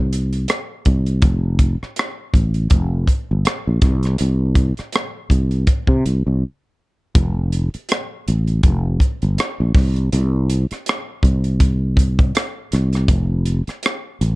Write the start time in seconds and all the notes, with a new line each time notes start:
Already playing: C2
0.13 closed hi-hat
0.33 closed hi-hat
0.48 cross-stick, closed hi-hat
0.85 C2, kick, closed hi-hat
1.06 closed hi-hat
1.22 F1, kick, closed hi-hat
1.59 kick, closed hi-hat
1.83 muted fretless electric bass stroke, cross-stick
1.96 cross-stick, closed hi-hat
2.34 A1, kick, closed hi-hat
2.54 closed hi-hat
2.70 F1, kick, closed hi-hat
3.07 kick, closed hi-hat
3.31 G1
3.45 cross-stick, closed hi-hat
3.67 A#1
3.82 C2, kick, cross-stick, closed hi-hat
4.03 cross-stick, closed hi-hat
4.18 C2, closed hi-hat
4.55 kick, closed hi-hat
4.77 muted fretless electric bass stroke, cross-stick, closed hi-hat
4.92 cross-stick, closed hi-hat
5.30 C2, kick, closed hi-hat
5.51 closed hi-hat
5.67 kick, closed hi-hat
5.87 C3, kick
6.06 C2, closed hi-hat
6.27 C2
7.15 F1, kick, closed hi-hat
7.52 closed hi-hat
7.74 muted fretless electric bass stroke, closed hi-hat
7.89 cross-stick, closed hi-hat
8.28 A1, closed hi-hat
8.47 closed hi-hat
8.63 F1, kick, closed hi-hat
9.00 kick, closed hi-hat
9.22 G1, closed hi-hat
9.38 cross-stick, closed hi-hat
9.60 A#1
9.75 C2, kick, cross-stick, open hi-hat
9.96 closed hi-hat
10.13 C2, closed hi-hat
10.50 closed hi-hat
10.71 muted fretless electric bass stroke, cross-stick, closed hi-hat
10.86 cross-stick, closed hi-hat
11.23 C2, kick, closed hi-hat
11.44 closed hi-hat
11.60 kick, closed hi-hat
11.97 kick, closed hi-hat
12.19 kick, closed hi-hat
12.35 cross-stick, closed hi-hat
12.72 C2, cross-stick, closed hi-hat
12.93 cross-stick, closed hi-hat
13.08 F1, kick, closed hi-hat
13.46 closed hi-hat
13.67 muted fretless electric bass stroke, cross-stick, closed hi-hat
13.83 cross-stick, closed hi-hat
14.21 A1, closed hi-hat